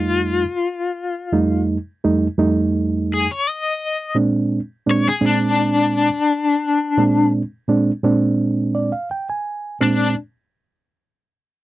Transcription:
Already playing: reed electric piano F2 G3 A3 D#4, overdriven electric guitar F4
1.32 reed electric piano F2 G3 A3 D#4
2.04 reed electric piano F2 G3 A3 D#4
2.38 reed electric piano F2 G3 A3 D#4
3.14 overdriven electric guitar G#4
3.31 overdriven electric guitar C#5
3.50 overdriven electric guitar D#5
4.15 reed electric piano A#2 G#3 C4 D4
4.86 reed electric piano A#2 G#3 C4 D4
4.91 overdriven electric guitar C#5
5.09 overdriven electric guitar G#4
5.21 reed electric piano A#2 G#3 C4 D4
5.26 overdriven electric guitar D4
6.97 reed electric piano A#2 G#3 C4 D4
7.68 reed electric piano A#2 G#3 C4 D4
8.03 reed electric piano A#2 G#3 C4 D4
8.75 reed electric piano D5
8.92 reed electric piano F5
9.11 reed electric piano G5
9.30 reed electric piano G#5
9.80 reed electric piano A#2 G#3 C4 D4, overdriven electric guitar D4

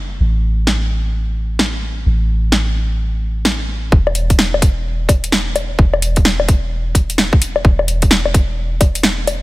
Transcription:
Already playing: 808-style bass F#1
0.20 808-style bass A1
0.67 snare
1.59 snare
2.06 808-style bass A1
2.52 snare
3.45 snare
3.92 808-style bass E1, kick
4.07 low woodblock
4.15 closed hi-hat
4.30 kick, closed hi-hat
4.39 snare
4.54 low woodblock
4.62 kick, closed hi-hat
5.09 kick, closed hi-hat, low woodblock
5.24 closed hi-hat
5.32 snare
5.56 closed hi-hat, low woodblock
5.79 808-style bass E1, kick
5.94 low woodblock
6.02 closed hi-hat
6.16 kick, closed hi-hat
6.25 snare
6.40 low woodblock
6.48 kick, closed hi-hat
6.95 kick, closed hi-hat
7.10 closed hi-hat
7.18 snare
7.33 kick
7.42 closed hi-hat
7.56 low woodblock
7.65 808-style bass E1, kick
7.79 low woodblock
7.88 closed hi-hat
8.02 kick, closed hi-hat
8.11 snare
8.26 low woodblock
8.34 kick, closed hi-hat
8.81 kick, closed hi-hat, low woodblock
8.95 closed hi-hat
9.03 snare
9.27 closed hi-hat, low woodblock

